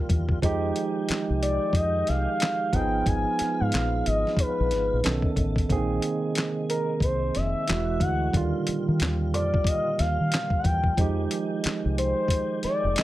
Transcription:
0.00 0.40 A#2 medium
0.00 0.39 D3 medium
0.00 0.38 D#3 medium
0.00 0.39 G3 medium
0.00 0.40 G3 medium
0.00 0.40 F4 medium
0.00 0.43 F4 medium
0.00 0.10 A#4 medium
0.09 0.38 E2 medium
0.09 kick medium
0.09 closed hi-hat medium
0.29 kick medium
0.42 0.71 F2 medium
0.42 2.71 D#3 medium
0.42 2.69 F3 medium
0.42 5.00 G#3 medium
0.42 2.70 G#3 medium
0.42 2.70 D#4 medium
0.42 2.71 G4 medium
0.42 kick medium
0.42 closed hi-hat medium
0.76 closed hi-hat medium
1.09 muted fingered electric bass stroke soft
1.09 snare medium
1.09 clap medium
1.09 closed hi-hat medium
1.30 1.57 C2 medium
1.43 1.77 D5 medium
1.43 closed hi-hat medium
1.73 2.02 F2 medium
1.73 2.09 D#5 loud
1.73 kick medium
1.73 closed hi-hat medium
2.07 2.26 C2 medium
2.07 2.75 F5 loud
2.07 snare soft
2.07 closed hi-hat medium
2.40 snare loud
2.40 clap medium
2.40 closed hi-hat medium
2.72 3.01 G#1 medium
2.72 4.99 F3 medium
2.72 5.02 B3 medium
2.72 5.00 B3 medium
2.72 5.01 D#4 medium
2.72 5.02 F4 medium
2.72 5.01 G#4 medium
2.72 3.08 G5 loud
2.72 kick medium
2.72 closed hi-hat medium
3.06 3.24 G#1 loud
3.06 3.61 G#5 loud
3.06 kick loud
3.06 closed hi-hat medium
3.39 muted fingered electric bass stroke soft
3.39 snare soft
3.39 closed hi-hat medium
3.60 3.71 G#2 medium
3.60 4.01 F5 loud
3.72 4.01 A#1 medium
3.72 snare medium
3.72 clap medium
3.72 closed hi-hat medium
4.01 4.08 F5 medium
4.06 4.23 G#1 medium
4.06 4.39 D#5 medium
4.06 closed hi-hat medium
4.27 snare soft
4.37 5.34 B4 medium
4.37 kick medium
4.37 closed hi-hat loud
4.60 4.73 A#1 medium
4.71 4.89 G#1 medium
4.71 snare soft
4.71 closed hi-hat medium
4.93 5.03 A#1 medium
5.03 5.22 B1 medium
5.03 5.69 C#3 medium
5.03 5.70 D#3 medium
5.03 7.65 D#3 medium
5.03 5.69 A3 medium
5.03 5.70 B3 soft
5.03 5.70 C#4 soft
5.03 5.70 A4 medium
5.03 snare loud
5.03 clap medium
5.03 closed hi-hat medium
5.22 kick medium
5.36 5.65 A1 medium
5.36 kick medium
5.36 closed hi-hat medium
5.56 kick medium
5.56 closed hi-hat soft
5.69 5.98 A#1 medium
5.69 7.66 C3 medium
5.69 5.77 D3 medium
5.69 8.31 G#3 medium
5.69 7.64 A#3 medium
5.69 7.64 C4 medium
5.69 7.65 G#4 medium
5.69 kick medium
5.69 closed hi-hat medium
5.75 7.66 D#3 medium
6.02 closed hi-hat medium
6.35 snare medium
6.35 clap medium
6.35 closed hi-hat medium
6.70 7.00 A#4 medium
6.70 closed hi-hat medium
7.00 7.29 C2 medium
7.00 7.37 C5 medium
7.00 kick medium
7.00 closed hi-hat medium
7.35 7.53 F1 medium
7.35 8.03 E5 loud
7.35 snare soft
7.35 closed hi-hat medium
7.67 7.97 E1 loud
7.67 8.33 E3 medium
7.67 8.34 E3 soft
7.67 8.34 G#3 medium
7.67 8.34 E4 soft
7.67 8.33 F#4 medium
7.67 8.35 F#4 medium
7.67 snare loud
7.67 clap medium
7.67 closed hi-hat medium
8.00 8.29 D2 medium
8.00 8.34 F#5 loud
8.00 kick loud
8.00 closed hi-hat medium
8.33 8.51 D#2 loud
8.33 10.95 A#2 medium
8.33 10.94 D3 medium
8.33 10.93 D#3 medium
8.33 10.94 G3 medium
8.33 10.95 G3 medium
8.33 10.95 F4 medium
8.33 kick loud
8.33 closed hi-hat medium
8.67 muted fingered electric bass stroke soft
8.67 closed hi-hat medium
8.88 8.98 D#3 medium
9.00 9.34 D#2 medium
9.00 snare loud
9.00 clap medium
9.00 closed hi-hat medium
9.34 9.50 F2 medium
9.34 9.69 D5 medium
9.34 closed hi-hat medium
9.54 kick medium
9.64 9.98 D#5 loud
9.64 kick loud
9.64 closed hi-hat loud
9.99 10.16 D#2 medium
9.99 10.61 F5 medium
9.99 snare soft
9.99 closed hi-hat medium
10.20 10.30 D#3 medium
10.32 snare loud
10.32 clap medium
10.32 closed hi-hat medium
10.50 kick medium
10.59 10.66 F#5 medium
10.64 10.93 E2 medium
10.64 10.97 G5 medium
10.64 kick medium
10.64 closed hi-hat medium
10.84 kick medium
10.97 11.26 F2 medium
10.97 13.03 D#3 medium
10.97 13.03 F3 medium
10.97 13.03 G#3 medium
10.97 13.03 D#4 medium
10.97 13.03 G4 medium
10.97 kick loud
10.97 closed hi-hat medium
11.31 closed hi-hat medium
11.64 muted fingered electric bass stroke soft
11.64 snare medium
11.64 clap medium
11.64 closed hi-hat medium
11.85 12.13 C2 medium
11.98 12.59 C5 loud
11.98 closed hi-hat medium
12.28 kick medium
12.28 closed hi-hat medium
12.63 12.99 D5 loud
12.63 muted fingered electric bass stroke soft
12.63 snare soft
12.63 closed hi-hat medium
12.84 12.94 F1 medium
12.96 13.03 D#5 loud
12.96 snare loud
12.96 clap medium
12.96 closed hi-hat medium

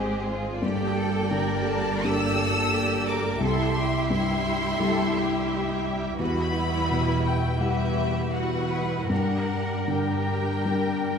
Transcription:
0.00 0.63 G#1 soft
0.00 0.59 G#2 soft
0.00 0.65 D#3 soft
0.00 0.58 G#3 soft
0.00 0.63 G#3 medium
0.00 0.58 C4 soft
0.00 0.59 C4 soft
0.00 0.29 G4 medium
0.00 0.63 G#4 medium
0.00 0.59 C5 soft
0.00 0.59 C5 medium
0.00 0.29 D#5 medium
0.29 0.62 F4 medium
0.62 3.41 G1 medium
0.62 3.37 G2 soft
0.62 3.38 A#3 medium
0.62 3.38 G4 medium
0.62 0.97 G4 medium
0.62 3.38 A4 medium
0.62 3.42 D5 medium
0.62 1.64 G5 medium
0.97 1.32 A4 medium
1.31 2.46 D3 soft
1.31 2.03 A#4 soft
1.68 2.04 A5 medium
2.04 3.37 A#3 soft
2.04 3.38 D4 soft
2.04 2.39 G4 soft
2.04 3.38 G4 soft
2.04 3.08 E6 medium
2.39 2.73 A4 soft
2.73 3.07 G4 medium
3.07 3.42 A#4 medium
3.07 3.42 D6 medium
3.40 6.15 C2 soft
3.40 6.16 C2 medium
3.40 6.16 G3 medium
3.40 6.16 E4 medium
3.40 6.20 G4 medium
3.40 3.76 A4 medium
3.40 6.17 E5 medium
3.40 4.11 C6 medium
3.76 4.11 G4 medium
4.10 5.23 G2 soft
4.10 4.81 E4 soft
4.10 5.82 C6 medium
4.80 6.16 G3 soft
4.80 6.16 E4 soft
4.80 6.16 G4 soft
4.80 5.15 A4 medium
5.15 6.20 G4 soft
6.19 9.06 E2 soft
6.19 7.56 G3 medium
6.19 7.56 E4 soft
6.19 6.54 F#4 soft
6.19 7.56 F#4 soft
6.19 7.57 B4 soft
6.19 7.21 B5 medium
6.54 7.60 E4 soft
6.90 8.03 B2 soft
7.25 7.60 G5 medium
7.60 8.30 G3 soft
7.60 9.06 G3 soft
7.60 8.30 E4 soft
7.60 9.07 E4 soft
7.60 8.31 F#4 soft
7.60 8.33 G4 soft
7.60 8.32 B4 soft
7.60 8.33 E5 medium
7.60 9.07 F#5 soft
8.32 9.08 G3 soft
8.32 9.08 E4 soft
8.32 8.70 F#4 soft
8.32 9.08 F#4 soft
8.32 9.09 B4 soft
8.32 9.10 F#5 medium
8.70 9.10 B4 soft
9.09 11.18 G2 soft
9.09 9.86 G3 soft
9.09 9.86 D4 soft
9.09 9.87 G4 soft
9.09 11.18 A#4 soft
9.09 9.87 A#4 soft
9.09 9.87 F#5 medium
9.87 11.11 D3 soft
9.87 11.18 G3 soft
9.87 11.18 D4 soft
9.87 11.18 G4 soft
9.87 11.18 A#4 soft
9.87 11.18 G5 soft
10.65 11.18 G3 soft
10.65 11.18 D4 soft
10.65 11.18 A#4 soft

